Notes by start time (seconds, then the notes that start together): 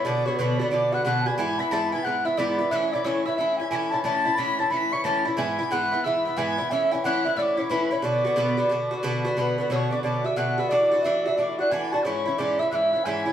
Already playing: B4 C#5 E5 F#5 G#5
0.04 B2 D3 B3 F#4 D5 D6
0.25 D3 B3 F#4 C#5 C#6
0.37 B2 D3 B3 B4 C#6
0.41 F#4 B5
0.58 B3 F#4 D5
0.63 D3
0.71 B2 D3 B3 F#4 D5 D6
0.92 D3 B3 F#4 F#5 F#6
1.04 B2 D3 B3 F#4 F#5 F#6
1.21 A5
1.26 D3 B3 F#4 G#5 G#6
1.38 G#2 E3 B3 E4 G#5 G#6
1.58 E3 B3 E4 B5 B6
1.71 G#2 E3 B3 E4 A5 A6
1.92 E3 B3 E4 G#5 G#6
2.04 G#2 E3 B3 F#5 F#6
2.08 E4
2.25 E3 B3 E4 E5 E6
2.37 G#2 E3 B3 E4 D5 D6
2.59 E3 B3 E4
2.71 A2 E3 C#4 E4 E5 F#6
2.75 E6
2.92 E3 C#4 E4 D5 D6
3.04 A2 E3 C#4 E4 C#5 C#6 E6
3.25 E3 C#4 E4 E5 E6
3.37 A2 E3 C#4 E5 E6
3.41 E4
3.57 C#4 E4 G#5 G#6
3.62 E3
3.70 A2 E3 C#4 E4 G#5 B6
3.75 G#6
3.90 C#4 E4 A5 A6
3.95 E3
4.03 A2 E3 C#4 E4 A5 A6
4.24 E3 C#4 E4 A5
4.36 A2 E3 C#4 B5 B6
4.40 E4
4.59 E3 C#4 E4 A5 A6
4.70 A2 E3 C#4 E4 B5 C#7
4.76 B6
4.92 E3 C#4 E4 C#6 C#7
5.04 A2 E3 C#4 E4 A5 A6
5.25 E3 C#4 E4
5.37 G#2 E3 B3 E4 G#5 G#6
5.59 E3 B3 E4
5.71 G#2 E3 B3 E4 F#5 F#6
5.92 E3 B3 E4
6.03 G#2 E3 B3 E4 E5 E6
6.25 E3 B3 E4
6.37 G#2 E3 B3 E4 G#5 G#6
6.58 E3 B3 E4
6.71 A2 E3 C#4 E4 E5 E6
6.91 E3 C#4 E4 G#5
7.04 A2 E3 C#4 E4 F#5 F#6
7.25 E3 C#4 E4 E5
7.36 A2 E3 C#4 E4 D5 E6
7.42 D6
7.57 E3 C#4 E4 C#5
7.70 A2 E3 C#4 E4 B4 B5
7.91 E3 C#4 E4 C#5
8.02 B2 D3 B3 F#4 D5 D6
8.25 D3 B3 F#4
8.36 B2 D3 B3 F#4
8.57 D3 B3 F#4
8.69 B2 D3 B3 F#4
8.91 D3 B3 F#4
9.03 B2 D3 B3 F#4
9.25 D3 B3 F#4
9.37 B2 D3 B3 F#4 B4 B5
9.58 D3 B3 F#4 B4 B5
9.70 B2 D3 B3 F#4 C#5 E6
9.75 C#6
9.91 D3 B3 F#4 D5 D6
10.03 B2 D3 B3 F#4 D5 D6
10.24 D3 B3 F#4 E5 E6
10.36 B2 D3 B3 F#4 F#5 F#6
10.58 D3 B3 F#4 E6
10.69 A2 E3 D4 F#4 D5 D6
10.91 E3 D4 F#4
11.03 A2 E3 D4 F#4 E5 E6
11.24 D4 F#4 E5 E6
11.29 E3
11.37 A2 E3 D4 F#4 D5 D6
11.58 E3 D4 F#4 F#5 F#6
11.70 A2 E3 D4 F#4 G#5 G#6
11.91 D4 F#4 A5 A6
11.96 E3
12.04 G#2 E3 C#4 E4 C#5 C#6
12.26 E3 C#4 E4
12.38 G#2 E3 C#4 E4 D5 D6
12.59 E3 C#4 E4 E5 E6
12.71 G#2 E3 C#4 E4 E5 F#6
12.75 E6
12.93 E3 C#4 E4 F#5
13.04 G#2 E3 C#4 E4 G#5 G#6
13.26 E3 C#4 E4